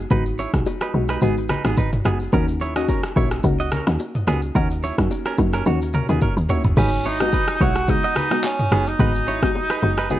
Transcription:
0.10 log drum bass G#1, synth pluck G#3 B3 D#4 F#4, clean electric guitar D#4 B4, kick, low conga, shaker
0.26 shaker
0.39 clean electric guitar E4 C#5, low bongo, shaker
0.53 log drum bass B1, synth pluck G#3 B3 D#4 F#4, kick, cross-stick, shaker
0.66 high bongo, shaker
0.81 clean electric guitar D#4 B4, cross-stick, shaker
0.94 log drum bass B1, synth pluck G#3 B3 D#4 F#4, low bongo
1.09 clean electric guitar D#4 B4, cross-stick, shaker
1.21 log drum bass G#1, synth pluck G#3 B3 D#4 F#4, clean electric guitar B3 G#4, low conga, shaker
1.37 shaker
1.49 clean electric guitar D#4 B4, cross-stick, low conga, shaker
1.64 log drum bass G#1, synth pluck G#3 B3 D#4 F#4, clean electric guitar B3 G#4, cross-stick, low bongo, shaker
1.77 log drum bass G#1, clean electric guitar D#4 B4, kick, high bongo, shaker
1.93 mid tom, shaker
2.05 log drum bass F#1, synth pluck G#3 B3 D#4 F#4, clean electric guitar B3 G#4, cross-stick, high bongo, shaker
2.20 shaker
2.33 log drum bass D#2, synth pluck A#3 C#4 D#4 F#4, clean electric guitar C#4 A#4, kick, low conga, shaker
2.48 shaker
2.61 clean electric guitar E4 C#5, low bongo, shaker
2.76 synth pluck A#3 C#4 D#4 F#4, clean electric guitar F#4 D#5, cross-stick, shaker
2.88 clean electric guitar C#4 A#4, kick, high bongo, shaker
3.03 cross-stick, shaker
3.16 log drum bass A#1, synth pluck A#3 C#4 D#4 F#4, clean electric guitar E4 C#5, kick, low bongo
3.31 cross-stick, shaker
3.44 log drum bass C#2, synth pluck A#3 C#4 D#4 F#4, kick, low conga, shaker
3.60 clean electric guitar F#4 D#5, shaker
3.71 clean electric guitar C#4 A#4, cross-stick, low conga, shaker
3.87 log drum bass D#2, synth pluck A#3 C#4 D#4 F#4, cross-stick, low bongo, shaker
3.99 high bongo, shaker
4.15 mid tom, shaker
4.27 log drum bass C#2, synth pluck A#3 C#4 D#4 F#4, clean electric guitar B3 G#4, cross-stick, high bongo, shaker
4.42 shaker
4.55 log drum bass D#2, synth pluck A#3 C#4 D#4 F#4, clean electric guitar C#4 A#4, kick, low conga, shaker
4.70 shaker
4.83 clean electric guitar E4 C#5, low bongo, shaker
4.98 log drum bass F#2, synth pluck A#3 C#4 D#4 F#4, kick, cross-stick, shaker
5.11 high bongo, shaker
5.26 clean electric guitar C#4 A#4, cross-stick, shaker
5.38 log drum bass F#2, synth pluck A#3 C#4 D#4 F#4, kick, low bongo, shaker
5.53 clean electric guitar C#4 A#4, cross-stick, shaker
5.66 log drum bass D#2, synth pluck A#3 C#4 D#4 F#4, clean electric guitar F#4 C#5, high tom, low conga, shaker
5.82 shaker
5.94 clean electric guitar C#4 A#4, mid tom, low conga, shaker
6.09 log drum bass D#2, synth pluck A#3 C#4 D#4 F#4, clean electric guitar B3 G#4, mid tom, low bongo, shaker
6.22 clean electric guitar C#4 A#4, kick, mid tom, high bongo, shaker
6.37 log drum bass D#2, shaker
6.49 synth pluck A#3 C#4 D#4 F#4, clean electric guitar E4 C#5, floor tom, high bongo, shaker
6.64 log drum bass F#1, floor tom, shaker
6.77 log drum bass G#1, synth pluck G#3 B3 D#4 F#4, tenor saxophone C#4, clean electric guitar D#4 B4, kick, crash, low conga, shaker
6.93 shaker
7.05 tenor saxophone D#4, clean electric guitar E4 C#5, low bongo, shaker
7.20 synth pluck G#3 B3 D#4 F#4, clean electric guitar F#4 D#5, cross-stick, low bongo, shaker
7.33 clean electric guitar D#4 B4, kick, high bongo, shaker
7.48 cross-stick, shaker
7.60 log drum bass B1, synth pluck G#3 B3 D#4 F#4, clean electric guitar E4 C#5, tenor saxophone F#4, kick, low bongo
7.75 cross-stick, shaker
7.88 synth pluck G#3 B3 D#4 F#4, tenor saxophone D#4, kick, low conga, shaker
8.04 clean electric guitar F#4 D#5, shaker
8.16 clean electric guitar D#4 B4, cross-stick, low conga, shaker
8.31 synth pluck G#3 B3 D#4 F#4, cross-stick, high bongo, low bongo, shaker
8.44 tenor saxophone C#4, clap, high bongo, shaker
8.59 mid tom, shaker
8.71 log drum bass F#1, synth pluck G#3 B3 D#4 F#4, clean electric guitar B3 G#4, cross-stick, high bongo, shaker
8.86 tenor saxophone D#4, shaker
8.99 log drum bass G#1, synth pluck G#3 B3 D#4 F#4, clean electric guitar D#4 B4, kick, low conga, shaker
9.15 shaker
9.28 clean electric guitar E4 C#5, low bongo, shaker
9.42 synth pluck G#3 B3 D#4 F#4, kick, cross-stick, low bongo, shaker
9.55 high bongo, shaker
9.70 clean electric guitar D#4 B4, cross-stick, shaker
9.82 log drum bass F#1, synth pluck G#3 B3 D#4 F#4, low bongo
9.97 clean electric guitar D#4 B4, cross-stick, shaker
10.10 synth pluck G#3 B3 D#4 F#4, clean electric guitar B3 G#4, low conga, shaker

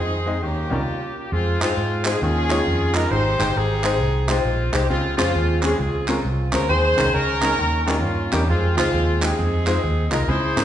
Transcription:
Already playing: upright piano D#3, horn section G#4, string section C5 D#5 C6
0.00 fingered electric bass F2, horn section C4 D#4
0.26 upright piano G#3 C4 D#4 D#5
0.43 fingered electric bass D#2, upright piano D#3, horn section A#3 C#4 G4, string section C#5 D#5 G5 A#5
0.70 fingered electric bass C#2, upright piano G3 C#4 D#4 A#4, horn section A#3 C#4 F4
1.17 horn section G4
1.32 fingered electric bass F2, horn section G#3 C4 F4
1.61 fingered electric bass G2, upright piano G#3 D#4 F4 C5, horn section G#3 C4 F4, clap
1.77 fingered electric bass G#2
2.05 upright piano G#3 D#4 F4 C5, horn section G#4, clap
2.22 fingered electric bass D#2, upright piano D#3, horn section C#4 F4 G#4
2.50 upright piano G#3 D#4 F4 C#5, clap
2.67 fingered electric bass F2
2.94 upright piano G#3 D#4 F4 D#5, horn section A#4, clap
3.11 fingered electric bass G#1, upright piano G#2, horn section D#4 G4 C5
3.39 fingered electric bass G1, upright piano G#3 D#4 G4 C5, clap
3.56 fingered electric bass G#1, horn section C4 D#4 G#4
3.84 upright piano G#3 D#4 G4 C5, clap
4.00 fingered electric bass C2
4.28 upright piano G#3 D#4 G4 C5, horn section C4 F4, clap
4.45 fingered electric bass A#1
4.72 fingered electric bass C2, upright piano G#3 D#4 G4 C5, horn section G4, clap
4.89 fingered electric bass C#2, upright piano C#3, horn section G#3 C4 F4
5.17 fingered electric bass F2, upright piano G#3 C#4 F4 C5, horn section G#3 C4 F4, clap
5.35 fingered electric bass D#2
5.62 upright piano G#3 C#4 F4 G#4, horn section G#4, clap
5.79 fingered electric bass C#2, horn section C4 F4 G#4
6.08 upright piano G#3 C#4 F4 A#4, clap
6.25 fingered electric bass C2
6.53 fingered electric bass D2, upright piano G#3 C#4 F4 C5, horn section A#4, clap
6.69 fingered electric bass D#2, upright piano D#3, horn section G#4 C5
6.97 fingered electric bass C2, upright piano G#3 C#4 D#4 A#4, clap
7.14 fingered electric bass C#2, horn section C#4 A#4
7.42 upright piano G#3 C#4 D#4 A#4, clap
7.59 fingered electric bass D#2, upright piano D#3
7.87 upright piano G3 C#4 D#4 A#4, horn section A#3 C#4 F4, clap
8.04 fingered electric bass G2
8.32 fingered electric bass E2, upright piano G3 C#4 D#4 A#4, horn section G4, clap
8.49 fingered electric bass F2, horn section G#3 C4 F4
8.77 fingered electric bass C#2, upright piano G#3 D#4 F4 C5, horn section G#3 C4 F4, clap
8.94 fingered electric bass D#2
9.22 upright piano G#3 D#4 F4 G4, horn section G#4, clap
9.38 fingered electric bass F2, horn section C4 D#4 G#4
9.66 upright piano G#3 D#4 F4 C5, clap
9.84 fingered electric bass D#2
10.11 fingered electric bass C2, upright piano G#3 D#4 F4 D#5, horn section A#4, clap
10.28 fingered electric bass C#2, upright piano C#3, horn section E4 G#4 C5
10.56 fingered electric bass G#2, upright piano G#3 C#4 E4 A#4, clap

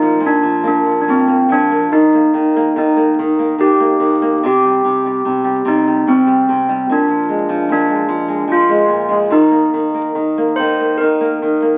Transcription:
Already playing: nylon-string guitar A#2 A#3, handbells D#4
0.02 nylon-string guitar F3
0.20 nylon-string guitar A#2
0.26 handbells D4
0.43 nylon-string guitar F3
0.63 nylon-string guitar A#3
0.68 handbells D4
0.86 nylon-string guitar F3
1.01 handbells D4
1.08 nylon-string guitar A#2, handbells C4
1.27 nylon-string guitar A#3
1.49 nylon-string guitar F3, handbells D4
1.71 nylon-string guitar A#3
1.92 nylon-string guitar D#3, handbells D#4
2.15 nylon-string guitar A#3
2.34 nylon-string guitar D#3
2.56 nylon-string guitar A#3
2.76 nylon-string guitar D#3, handbells D#4
2.97 nylon-string guitar A#3
3.19 nylon-string guitar D#3
3.39 nylon-string guitar A#3
3.58 nylon-string guitar D#3, handbells G4
3.80 nylon-string guitar A#3
4.00 nylon-string guitar D#3
4.22 nylon-string guitar A#3
4.43 nylon-string guitar C3, handbells G4
4.65 nylon-string guitar G3
4.84 nylon-string guitar C3
5.06 nylon-string guitar G3
5.25 nylon-string guitar C3
5.44 nylon-string guitar G3
5.65 nylon-string guitar C3, handbells D#4
5.88 nylon-string guitar G3
6.07 nylon-string guitar C3, handbells C4
6.27 nylon-string guitar G3
6.49 nylon-string guitar C3
6.69 nylon-string guitar G3
6.90 nylon-string guitar A#2, handbells D4
7.08 nylon-string guitar F3
7.29 nylon-string guitar G#3
7.49 nylon-string guitar F3
7.69 nylon-string guitar A#2, handbells D4
7.89 nylon-string guitar G#3
8.09 nylon-string guitar F3
8.28 nylon-string guitar G#3
8.48 nylon-string guitar F3
8.52 handbells F4
8.69 nylon-string guitar G#3
8.88 nylon-string guitar A#2
9.09 nylon-string guitar G#3
9.30 nylon-string guitar D#3, handbells D#4
9.51 nylon-string guitar A#3
9.74 nylon-string guitar D#3
9.94 nylon-string guitar A#3
10.15 nylon-string guitar D#3
10.38 nylon-string guitar A#3
10.56 nylon-string guitar D#3, handbells C5
10.80 nylon-string guitar A#3
10.98 nylon-string guitar D#3, handbells A#4
11.21 nylon-string guitar A#3
11.42 nylon-string guitar D#3
11.62 nylon-string guitar A#3

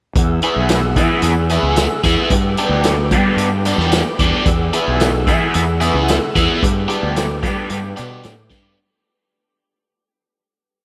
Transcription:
0.16 fingered electric bass E2, tonewheel organ G#4 F#5 E6, kick, closed hi-hat, tambourine
0.42 overdriven electric guitar E3 B3 E4 G#4, closed hi-hat
0.56 fingered electric bass B1
0.69 snare, closed hi-hat, tambourine
0.96 fingered electric bass E3, overdriven electric guitar E3 B3 E4 G#4, kick, closed hi-hat, tambourine
1.22 fingered electric bass E2, closed hi-hat, tambourine
1.49 overdriven electric guitar E3 B3 E4 G#4, closed hi-hat, tambourine
1.63 fingered electric bass C#2
1.76 snare, closed hi-hat, tambourine
2.03 fingered electric bass E2, overdriven electric guitar E3 B3 E4 G#4, kick, closed hi-hat, tambourine
2.30 fingered electric bass G2, tonewheel organ B4 G5 D6, kick, closed hi-hat, tambourine
2.57 overdriven electric guitar G3 B3 D4 G4, closed hi-hat
2.69 fingered electric bass D2
2.84 snare, closed hi-hat, tambourine
3.11 fingered electric bass G3, overdriven electric guitar G3 B3 D4 G4, kick, closed hi-hat, tambourine
3.37 fingered electric bass G2, closed hi-hat, tambourine
3.65 overdriven electric guitar G3 B3 D4 G4, closed hi-hat, tambourine
3.78 fingered electric bass E2, snare
3.92 snare, closed hi-hat, tambourine
4.19 fingered electric bass E2, overdriven electric guitar G3 B3 D4 G4, kick, closed hi-hat
4.46 fingered electric bass E2, tonewheel organ G#4 F#5 E6, kick, closed hi-hat, tambourine
4.73 overdriven electric guitar E3 B3 E4 G#4, closed hi-hat
4.88 fingered electric bass B1
5.00 snare, closed hi-hat, tambourine
5.27 fingered electric bass E3, overdriven electric guitar E3 B3 E4 G#4, kick, closed hi-hat, tambourine
5.54 fingered electric bass E2, closed hi-hat, tambourine
5.81 overdriven electric guitar E3 B3 E4 G#4, closed hi-hat, tambourine
5.94 fingered electric bass C#2
6.08 snare, closed hi-hat, tambourine
6.35 fingered electric bass E2, overdriven electric guitar E3 B3 E4 G#4, kick, closed hi-hat, tambourine
6.63 fingered electric bass G2, tonewheel organ B4 G5 D6, kick, closed hi-hat
6.88 overdriven electric guitar G3 B3 D4 G4, closed hi-hat
7.03 fingered electric bass D2
7.16 snare, closed hi-hat, tambourine
7.43 fingered electric bass G3, overdriven electric guitar G3 B3 D4 G4, kick, closed hi-hat, tambourine
7.70 fingered electric bass G2, closed hi-hat, tambourine
7.97 fingered electric bass B2, overdriven electric guitar G3 B3 D4 G4, closed hi-hat, tambourine
8.23 fingered electric bass A2, snare, closed hi-hat, tambourine
8.50 fingered electric bass G2, overdriven electric guitar G3 B3 D4 G4, kick, closed hi-hat, tambourine

